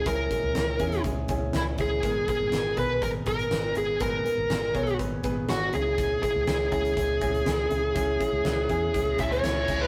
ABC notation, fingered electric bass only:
X:1
M:4/4
L:1/16
Q:1/4=122
K:C#dor
V:1 name="Fingered electric bass" clef=bass
C,,2 z C,, C,,2 E,,2 C,,2 C,,2 C,,2 C,,2 | G,,,2 z G,,, G,,,2 B,,,2 G,,,2 G,,,2 G,,,2 G,,,2 | G,,,2 z G,,, G,,,2 B,,,2 G,,,2 G,,,2 G,,,2 C,,2- | C,,2 z C,, C,,2 C,,2 C,,2 C,,2 C,,2 C,,2 |
C,,2 z C,, C,,2 E,,2 C,,2 C,,2 C,,2 C,,2 |]